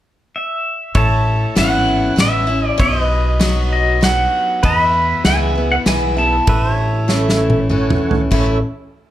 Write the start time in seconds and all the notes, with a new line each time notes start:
0.36 E5
0.95 A1 A2 C#5 E5 A5, kick, ride
1.55 G#1 E3 B3 C#4 E4 F#5, snare, ride
2.16 A1 E3 B3 C#4 E4, snare, ride
2.20 E5
2.47 C#4 E4
2.67 D5
2.78 B1 B2 C#5 D#5 E5, kick, ride
3.01 B4 D#5
3.40 F#3 B3 D#4 F#4, snare, ride
3.73 D#5
4.01 F#3 B3 D#4 F#4 F#5, snare, ride
4.63 E2 B4 D#5 B5, kick, ride
4.84 E5
5.24 C#2 E3 G#3 B3 E4 G#4 B4 E5 G#5, snare, ride
5.55 B3 E4
5.72 F#5
5.85 B1 E3 G#3 B3 E4 G#4 B4 E5 G#5, snare, ride
6.17 B3 E4 A5
6.47 A1 A2 B4 E5, kick, ride
6.74 C#5
7.08 E3 A3 C#4 E4 A4 C#5 E5, snare
7.29 snare
7.50 high tom
7.69 E3 A3 C#4 E4 A4 C#5 F#5, mid tom
7.90 mid tom
8.11 floor tom
8.31 A1 A2 E3 A3 C#4 E4 A4 C#5 E5, kick, crash